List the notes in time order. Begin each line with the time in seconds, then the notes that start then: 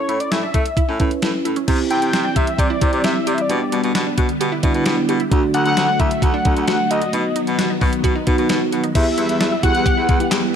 Already playing: C#4 E4 A4 C#5
0.09 A2 E4, closed hi-hat
0.20 D5, closed hi-hat
0.31 A2 C#4 E5, snare, closed hi-hat
0.43 D4
0.54 A3 E4, kick, closed hi-hat
0.66 closed hi-hat
0.77 E4, kick, closed hi-hat
0.89 A2 C#4
1.00 A2 C#4 E4 B4, kick, closed hi-hat
1.11 closed hi-hat
1.22 A2 E4, snare, closed hi-hat
1.45 A2 E4, closed hi-hat
1.56 C#4, closed hi-hat
1.68 C3 E3 G3 C4 E4 G4, kick, closed hi-hat, crash
1.90 C3 E4 G5, closed hi-hat
2.02 C3 G5, closed hi-hat
2.13 C3 C4, snare, closed hi-hat
2.25 D4
2.36 C3 E4 E5, kick, closed hi-hat
2.47 closed hi-hat
2.59 C3 G4 D5, kick, closed hi-hat
2.70 E4
2.81 C3 C4 E4 G4, kick, closed hi-hat
2.93 C3, closed hi-hat
3.04 C3 G4 E5, snare, closed hi-hat
3.27 C3 G4 D5, closed hi-hat
3.34 E5, closed hi-hat
3.38 E4 D5
3.49 B2 D3 B3 D4 G4, closed hi-hat
3.72 B2 D4, closed hi-hat
3.84 B2, closed hi-hat
3.95 B2 B3, snare, closed hi-hat
4.07 D4
4.18 B2 F#4, kick, closed hi-hat
4.29 closed hi-hat
4.41 B2 G4, closed hi-hat
4.52 E4
4.63 B2 B3 D4 E4, kick, closed hi-hat
4.74 B2, closed hi-hat
4.86 B2 G4 B5, snare, closed hi-hat
5.09 B2 G4, closed hi-hat
5.20 E4, closed hi-hat
5.31 D2 F#3 A3 D4 F#4, kick, closed hi-hat
5.54 D2 D4 F#5, closed hi-hat
5.66 D2 F#5, closed hi-hat
5.77 D2 C4, snare, closed hi-hat
5.88 D4
6.00 D2 E4 E5, kick, closed hi-hat
6.11 closed hi-hat
6.22 D2 F#4 F#5, kick, closed hi-hat
6.34 D4
6.45 D2 A3 D4 F#4, kick, closed hi-hat
6.56 D2, closed hi-hat
6.68 D2 F#4 F#5, snare, closed hi-hat
6.91 D2 F#4 D#5, closed hi-hat
7.02 D4, closed hi-hat
7.13 B2 D#3 B3 D#4 F#4, closed hi-hat
7.36 D#4, closed hi-hat
7.47 B2, closed hi-hat
7.59 B2 B3, snare, closed hi-hat
7.70 D#4
7.81 B2 F#4, kick, open hi-hat
7.93 closed hi-hat
8.04 B2 F#4, kick, closed hi-hat
8.15 D#4
8.27 B2 B3 D#4 F#4, kick, closed hi-hat
8.38 B2, closed hi-hat
8.49 B2 F#4, snare, closed hi-hat
8.72 B2 F#4, closed hi-hat
8.84 D#4, closed hi-hat
8.95 E2 E3 G3 B3 E4 G4 E5 F#5, kick, closed hi-hat, crash
9.18 E2 E4, closed hi-hat
9.29 E2, closed hi-hat
9.41 E2 D4, snare, closed hi-hat
9.52 E4
9.63 E2 B3 E4 F#4 G4 F#5, kick, closed hi-hat
9.75 E2, closed hi-hat
9.86 G4, kick, closed hi-hat
9.97 E2 E4
10.09 E2, kick, closed hi-hat
10.20 B3 E4 G4, closed hi-hat
10.31 E2 G4, snare, clap, closed hi-hat